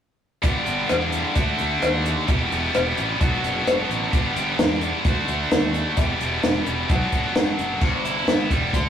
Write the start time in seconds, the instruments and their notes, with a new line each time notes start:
0.42 fingered electric bass G1, distorted electric guitar G2 D3 G3 B3 D4 G4, kick, closed hi-hat
0.66 fingered electric bass G1, closed hi-hat
0.89 fingered electric bass E2, cross-stick, closed hi-hat
1.12 closed hi-hat
1.35 fingered electric bass D2, distorted electric guitar D3 A3 D4 F#4, kick, closed hi-hat
1.59 fingered electric bass D2, closed hi-hat
1.82 fingered electric bass D#2, cross-stick, closed hi-hat
2.06 closed hi-hat
2.27 fingered electric bass E1, distorted electric guitar E2 B2 E3 G3 B3 G4, kick, closed hi-hat
2.52 fingered electric bass E1, closed hi-hat
2.75 fingered electric bass E1, cross-stick, closed hi-hat
2.97 fingered electric bass A1, closed hi-hat
3.19 fingered electric bass B1, distorted electric guitar B2 F#3 B3 D4 F#4, kick, closed hi-hat
3.44 fingered electric bass F#1, closed hi-hat
3.67 fingered electric bass F#1, cross-stick, closed hi-hat
3.89 fingered electric bass A1, closed hi-hat
4.12 fingered electric bass G1, distorted electric guitar G2 D3 G3 B3 D4 G4, kick, closed hi-hat
4.36 fingered electric bass G1, closed hi-hat
4.59 fingered electric bass E2, snare, closed hi-hat
4.81 closed hi-hat
5.05 fingered electric bass D2, distorted electric guitar D3 A3 D4 F#4, kick, closed hi-hat
5.28 fingered electric bass D2, closed hi-hat
5.51 fingered electric bass D#2, snare, closed hi-hat
5.74 closed hi-hat
5.96 fingered electric bass E1, distorted electric guitar E2 B2 E3 G3 B3 G4, kick, closed hi-hat
6.21 fingered electric bass E1, closed hi-hat
6.43 fingered electric bass E1, snare, closed hi-hat
6.66 fingered electric bass E1, closed hi-hat
6.89 fingered electric bass B1, distorted electric guitar B2 F#3 B3 D4 F#4, kick, closed hi-hat
7.12 fingered electric bass F#1, kick, closed hi-hat
7.35 fingered electric bass F#1, snare, closed hi-hat
7.59 fingered electric bass F#1, closed hi-hat
7.81 fingered electric bass G1, distorted electric guitar G2, kick, crash
8.05 distorted electric guitar E4, closed hi-hat
8.27 fingered electric bass G1, distorted electric guitar B3, snare, closed hi-hat
8.50 fingered electric bass E1, distorted electric guitar G3, kick, closed hi-hat
8.73 fingered electric bass D2, distorted electric guitar D3, kick, closed hi-hat